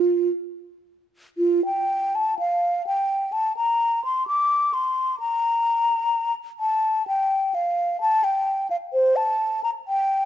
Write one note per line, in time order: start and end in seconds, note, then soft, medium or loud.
0.00 0.29 F4 medium
1.38 1.64 F4 medium
1.65 2.17 G5 medium
2.15 2.38 A5 medium
2.39 2.86 F5 medium
2.87 3.34 G5 medium
3.32 3.56 A5 medium
3.57 4.03 A#5 medium
4.05 4.27 C6 medium
4.27 4.75 D6 medium
4.74 5.19 C6 medium
5.20 6.33 A#5 medium
6.60 7.06 A5 medium
7.08 7.56 G5 medium
7.55 8.01 F5 medium
8.01 8.25 A5 medium
8.24 8.70 G5 medium
8.70 8.76 F5 medium
8.93 9.18 C5 medium
9.16 9.63 A5 medium
9.64 9.70 A#5 medium
9.88 10.25 G5 medium